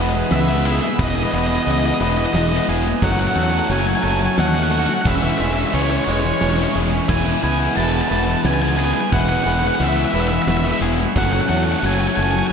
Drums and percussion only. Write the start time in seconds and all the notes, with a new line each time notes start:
0.31 snare, ride
0.65 ride
0.99 kick, ride
1.67 ride
2.35 snare, ride
3.02 kick, ride
3.70 ride
4.38 snare, ride
4.72 ride
5.05 kick, ride
5.73 ride
6.41 snare, ride
7.09 kick, crash
7.77 ride
8.45 snare, ride
8.79 ride
9.12 kick, ride
9.80 ride
10.48 snare, ride
11.16 kick, ride
11.84 ride